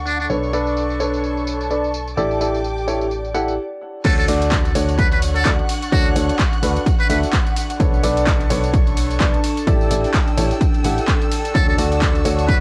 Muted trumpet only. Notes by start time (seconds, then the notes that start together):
0.06 D4
0.20 D4
4.05 A4
4.18 A4
4.99 B4
5.12 B4
5.36 A4
5.93 F#4
7.00 B4
7.10 B4
11.55 A4
11.68 A4
12.48 B4